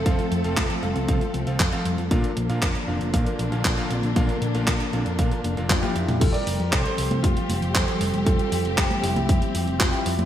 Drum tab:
CC |----------------|----------------|----------------|x---------------|
HH |xxxxxxxxxxxxxxxx|xxxxxx-xxxxxxxxx|xxxxxxxxxxxxxxxx|xxoxxxoxxxoxxxox|
CP |----x-------x---|----x-------x---|----x-------x---|----x-------x---|
T1 |----------------|----------------|------------oo--|----------------|
T2 |----------------|----------------|---------------o|----------------|
CG |----------------|----------------|----------------|-------o--o-----|
BD |o---o---o---o---|o---o---o---o---|o---o---o---o---|o---o---o---o---|

CC |----------------|
HH |xxoxxxoxxxoxxxox|
CP |----x-------x---|
T1 |----------------|
T2 |----------------|
CG |-----o-o-------o|
BD |o---o---o---o---|